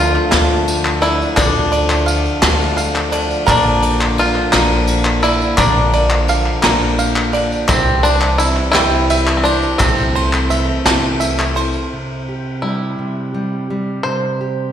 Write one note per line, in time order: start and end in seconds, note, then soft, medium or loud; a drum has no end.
0.00 0.15 D2 loud
0.00 1.33 D2 medium
0.00 0.33 D3 medium
0.00 1.33 D3 medium
0.00 7.65 D3 medium
0.00 0.24 F3 medium
0.00 0.32 F3 medium
0.00 7.65 F3 medium
0.00 0.24 A3 medium
0.00 3.44 A3 medium
0.00 0.25 D4 medium
0.00 0.32 D4 medium
0.00 3.44 D4 medium
0.00 0.31 F4 soft
0.00 1.02 F4 loud
0.00 0.25 A4 medium
0.00 0.30 A4 medium
0.00 0.67 A4 loud
0.00 0.25 D5 medium
0.00 1.00 D5 medium
0.15 clap soft
0.31 1.21 D2 medium
0.31 1.03 D3 medium
0.31 1.30 F3 medium
0.31 1.37 F3 medium
0.31 1.30 A3 medium
0.31 1.30 D4 medium
0.31 1.04 D4 medium
0.31 1.37 F4 medium
0.31 1.00 A4 medium
0.31 1.30 A4 medium
0.31 1.31 F5 medium
0.31 1.72 A5 medium
0.31 snare loud
0.31 clap medium
0.31 ride medium
0.68 ride medium
0.68 tambourine medium
0.85 clap medium
1.01 1.36 D4 soft
1.01 1.38 E4 medium
1.01 1.36 A4 medium
1.01 1.71 D5 medium
1.01 ride medium
1.01 tambourine soft
1.22 tambourine soft
1.36 3.44 D2 medium
1.36 2.26 D2 medium
1.36 2.07 D3 medium
1.36 3.44 D3 medium
1.36 2.35 F3 medium
1.36 2.06 F3 medium
1.36 2.35 A3 medium
1.36 3.08 D4 medium
1.36 2.07 D4 medium
1.36 2.36 D4 medium
1.36 2.08 F4 medium
1.36 2.77 A4 medium
1.36 2.36 A4 medium
1.36 2.08 A4 medium
1.36 2.36 D5 medium
1.36 kick loud
1.36 clap loud
1.36 ride medium
1.36 tambourine loud
1.72 3.11 D5 medium
1.72 ride medium
1.72 tambourine soft
1.90 clap medium
1.90 tambourine soft
2.06 2.42 F3 medium
2.06 2.42 D4 medium
2.06 2.41 F4 medium
2.06 2.40 A4 medium
2.06 2.76 F5 medium
2.06 ride medium
2.06 tambourine medium
2.26 tambourine soft
2.42 3.31 D2 medium
2.42 3.13 D3 medium
2.42 3.41 F3 medium
2.42 3.47 F3 medium
2.42 3.41 A3 medium
2.42 3.41 D4 medium
2.42 3.14 D4 medium
2.42 3.13 F4 medium
2.42 3.10 A4 medium
2.42 3.41 A4 medium
2.42 2.77 F5 medium
2.42 3.47 A5 medium
2.42 snare loud
2.42 clap medium
2.42 ride medium
2.42 tambourine soft
2.60 tambourine soft
2.77 3.47 F5 medium
2.77 3.11 F5 medium
2.77 ride medium
2.77 tambourine medium
2.95 clap medium
3.11 3.46 D4 medium
3.11 3.47 F4 soft
3.11 3.47 A4 medium
3.11 3.46 D5 medium
3.11 3.45 A5 medium
3.11 clap soft
3.11 ride medium
3.11 tambourine soft
3.31 tambourine soft
3.46 4.37 A#1 medium
3.46 5.55 A#1 soft
3.46 4.17 A#2 medium
3.46 5.55 A#2 medium
3.46 4.17 D3 medium
3.46 4.15 F3 medium
3.46 4.47 F3 medium
3.46 4.17 A#3 medium
3.46 4.47 A#3 medium
3.46 5.57 A#3 medium
3.46 4.18 D4 medium
3.46 4.47 D4 medium
3.46 7.66 D4 medium
3.46 4.87 A#4 medium
3.46 4.18 A#4 loud
3.46 4.47 A#4 medium
3.46 kick loud
3.46 clap loud
3.46 ride medium
3.46 tambourine medium
3.50 4.21 D4 medium
3.50 4.47 D5 medium
3.82 5.21 D5 medium
3.82 ride medium
3.82 tambourine soft
4.01 clap medium
4.16 4.52 F3 soft
4.16 4.52 A#3 medium
4.16 4.51 D4 soft
4.16 5.22 F4 loud
4.16 4.51 A#4 medium
4.16 ride medium
4.35 clap soft
4.52 5.42 A#1 medium
4.52 5.24 A#2 medium
4.52 5.23 D3 medium
4.52 5.23 F3 medium
4.52 5.52 F3 medium
4.52 5.22 A#3 medium
4.52 5.52 A#3 medium
4.52 5.21 D4 medium
4.52 5.52 D4 medium
4.52 5.20 A#4 medium
4.52 5.52 A#4 medium
4.52 5.52 D5 medium
4.52 5.93 A#5 medium
4.52 snare loud
4.52 clap medium
4.52 ride medium
4.88 ride medium
4.88 tambourine medium
5.05 clap medium
5.21 5.57 F3 soft
5.21 5.57 A#3 soft
5.21 5.58 D4 medium
5.21 5.59 E4 loud
5.21 5.57 A#4 medium
5.21 5.92 D5 medium
5.21 ride medium
5.21 tambourine soft
5.41 tambourine soft
5.57 6.47 A#1 medium
5.57 7.66 A#1 medium
5.57 6.28 A#2 medium
5.57 7.66 A#2 medium
5.57 6.28 D3 medium
5.57 6.26 F3 medium
5.57 6.57 F3 medium
5.57 6.27 A#3 medium
5.57 7.67 A#3 medium
5.57 6.57 A#3 medium
5.57 7.30 D4 medium
5.57 6.28 D4 medium
5.57 6.57 D4 medium
5.57 6.99 A#4 medium
5.57 6.29 A#4 medium
5.57 6.57 A#4 medium
5.57 6.57 D5 medium
5.57 kick loud
5.57 clap medium
5.57 ride medium
5.57 tambourine medium
5.93 7.32 D5 medium
5.93 ride medium
5.93 tambourine soft
6.10 clap medium
6.27 6.62 F3 soft
6.27 6.62 A#3 medium
6.27 6.62 D4 medium
6.27 6.61 A#4 medium
6.27 6.97 F5 medium
6.27 ride medium
6.27 tambourine medium
6.46 clap soft
6.62 7.52 A#1 medium
6.62 7.34 A#2 medium
6.62 7.34 D3 medium
6.62 7.62 F3 medium
6.62 7.34 F3 medium
6.62 7.34 A#3 medium
6.62 7.62 A#3 medium
6.62 7.32 D4 medium
6.62 7.62 D4 medium
6.62 7.31 A#4 medium
6.62 7.63 A#4 medium
6.62 7.63 D5 medium
6.62 7.69 A#5 medium
6.62 snare loud
6.62 clap medium
6.62 ride medium
6.99 7.69 F5 medium
6.99 ride medium
6.99 tambourine medium
7.16 clap medium
7.32 7.68 F3 medium
7.32 7.69 A#3 soft
7.32 7.69 D4 medium
7.32 7.68 A#4 medium
7.32 7.69 D5 medium
7.32 ride medium
7.32 tambourine soft
7.52 tambourine soft
7.68 9.76 C2 medium
7.68 8.58 C2 loud
7.68 8.39 C3 medium
7.68 9.76 C3 medium
7.68 11.88 C3 medium
7.68 11.87 E3 medium
7.68 8.67 G3 medium
7.68 8.37 G3 medium
7.68 9.78 G3 medium
7.68 8.67 C4 medium
7.68 8.05 C4 loud
7.68 8.39 C4 medium
7.68 8.67 E4 medium
7.68 11.88 E4 medium
7.68 8.40 E4 medium
7.68 9.10 G4 medium
7.68 8.40 G4 medium
7.68 8.68 C5 medium
7.68 8.68 E5 medium
7.68 kick loud
7.68 clap medium
7.68 ride medium
7.68 tambourine medium
8.03 8.38 D4 loud
8.03 9.44 C5 medium
8.03 ride medium
8.03 tambourine soft
8.21 clap medium
8.38 8.74 G3 soft
8.38 8.73 C4 medium
8.38 8.70 E4 loud
8.38 8.73 E4 medium
8.38 8.72 G4 medium
8.38 9.09 E5 medium
8.38 ride medium
8.38 tambourine medium
8.56 clap soft
8.72 9.64 C2 medium
8.72 9.45 C3 medium
8.72 9.73 G3 medium
8.72 9.45 G3 medium
8.72 9.73 C4 medium
8.72 9.46 C4 medium
8.72 9.38 E4 loud
8.72 9.45 E4 medium
8.72 9.73 E4 medium
8.72 9.42 G4 medium
8.72 9.73 C5 medium
8.72 9.73 E5 medium
8.72 9.80 G5 medium
8.72 snare loud
8.72 clap loud
8.72 ride medium
9.10 9.80 E5 medium
9.10 ride medium
9.10 tambourine medium
9.27 clap medium
9.37 9.44 C4 medium
9.43 9.79 C4 soft
9.43 9.80 D4 medium
9.43 9.80 E4 soft
9.43 9.79 G4 medium
9.43 9.80 C5 medium
9.43 ride medium
9.43 tambourine soft
9.62 tambourine soft
9.78 10.69 C2 loud
9.78 11.88 C2 medium
9.78 10.50 C3 medium
9.78 11.88 C3 medium
9.78 11.89 A3 medium
9.78 10.48 A3 medium
9.78 10.79 A3 medium
9.78 11.51 C4 medium
9.78 10.79 C4 medium
9.78 10.50 C4 medium
9.78 10.79 E4 medium
9.78 10.50 E4 medium
9.78 11.21 A4 medium
9.78 10.51 A4 medium
9.78 10.79 C5 medium
9.78 10.80 E5 medium
9.78 kick loud
9.78 clap loud
9.78 ride medium
9.78 tambourine medium
9.98 tambourine soft
10.15 11.55 C5 medium
10.15 ride medium
10.33 clap medium
10.33 tambourine soft
10.49 10.85 A3 medium
10.49 10.86 C4 soft
10.49 10.85 E4 medium
10.49 10.85 A4 medium
10.49 11.19 E5 medium
10.49 ride medium
10.49 tambourine medium
10.85 11.75 C2 medium
10.85 11.58 C3 medium
10.85 11.85 A3 medium
10.85 11.57 A3 medium
10.85 11.85 C4 medium
10.85 11.57 C4 medium
10.85 11.85 E4 medium
10.85 11.56 E4 medium
10.85 11.54 A4 medium
10.85 11.85 C5 medium
10.85 11.85 E5 medium
10.85 11.92 A5 medium
10.85 snare loud
10.85 clap medium
10.85 ride medium
11.20 11.91 E5 medium
11.20 ride medium
11.20 tambourine medium
11.38 clap medium
11.38 tambourine soft
11.55 11.93 C4 soft
11.55 11.92 E4 medium
11.55 11.91 A4 medium
11.55 11.91 C5 medium
11.55 ride medium
11.73 tambourine soft
11.93 12.98 C3 soft
12.29 14.00 G4 soft
12.62 13.33 G3 soft
12.62 14.03 E4 soft
12.99 14.00 C3 soft
13.34 13.69 G3 soft
13.70 14.72 G3 soft
14.03 14.72 C3 soft
14.03 14.72 C5 medium
14.41 14.72 G4 soft